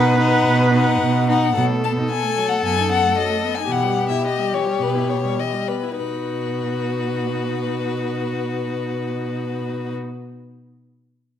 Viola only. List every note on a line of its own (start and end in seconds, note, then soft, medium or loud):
0.00 1.29 B4 medium
1.57 1.72 F#3 soft
1.70 1.85 A3 soft
1.83 1.98 B3 soft
1.97 2.11 D#4 soft
2.09 2.24 B3 soft
2.22 2.38 A3 soft
2.37 2.53 F#3 soft
2.51 2.62 A3 soft
2.63 2.78 B3 soft
2.77 2.91 D#4 soft
2.89 3.04 B3 soft
3.03 3.19 A3 soft
3.17 3.31 F#3 soft
3.30 3.45 A3 soft
3.43 3.58 B3 soft
3.57 3.69 D#4 soft
3.70 3.85 E3 soft
3.84 3.99 G3 soft
3.97 4.12 B3 soft
4.10 4.26 E4 soft
4.24 4.40 B3 soft
4.38 4.54 G3 soft
4.53 4.67 E3 soft
4.65 4.79 G3 soft
4.80 4.96 B3 soft
4.95 5.10 E4 soft
5.09 5.26 B3 soft
5.24 5.40 G3 soft
5.39 5.54 E3 soft
5.53 5.70 G3 soft
5.69 5.84 B3 soft
5.83 5.97 E4 soft
5.97 9.94 D#4 soft